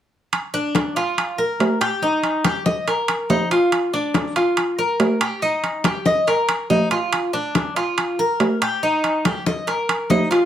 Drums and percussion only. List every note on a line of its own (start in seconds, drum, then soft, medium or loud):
0.33 high conga soft
0.33 high timbale medium
0.54 high conga soft
0.75 high conga medium
0.75 high timbale medium
0.75 low timbale soft
0.96 high conga soft
0.96 high timbale medium
1.18 high conga soft
1.18 high timbale medium
1.38 high conga soft
1.59 high conga soft
1.59 high timbale medium
1.59 low timbale medium
1.81 high timbale medium
2.02 high conga soft
2.23 high conga soft
2.23 high timbale medium
2.45 high conga medium
2.45 high timbale medium
2.45 low timbale soft
2.66 high conga medium
2.88 high conga soft
2.88 high timbale medium
3.08 high conga soft
3.08 high timbale medium
3.30 high conga medium
3.30 low timbale medium
3.51 high conga soft
3.51 high timbale medium
3.72 high conga soft
3.72 high timbale medium
3.94 high conga soft
4.14 high conga medium
4.14 high timbale medium
4.14 low timbale medium
4.36 high conga soft
4.36 high timbale medium
4.57 high conga soft
4.57 high timbale medium
4.78 high conga soft
5.00 high conga soft
5.00 high timbale medium
5.00 low timbale medium
5.21 high timbale medium
5.42 high conga soft
5.63 high conga soft
5.63 high timbale medium
5.84 high conga medium
5.84 high timbale medium
5.84 low timbale medium
6.06 high conga medium
6.28 high conga soft
6.28 high timbale medium
6.49 high conga soft
6.49 high timbale medium
6.70 high conga medium
6.70 low timbale medium
6.91 high conga soft
6.91 high timbale medium
7.13 high conga soft
7.13 high timbale medium
7.34 high conga soft
7.55 high conga medium
7.55 high timbale medium
7.55 low timbale medium
7.76 high conga soft
7.76 high timbale medium
7.98 high conga soft
7.98 high timbale medium
8.19 high conga soft
8.40 high conga soft
8.40 high timbale medium
8.40 low timbale medium
8.62 high timbale medium
8.83 high conga soft
9.04 high conga soft
9.04 high timbale medium
9.25 high conga medium
9.25 high timbale medium
9.25 low timbale medium
9.46 high conga medium
9.68 high conga soft
9.68 high timbale medium
9.89 high conga soft
9.89 high timbale medium
10.10 high conga medium
10.10 low timbale medium
10.31 high conga soft
10.31 high timbale medium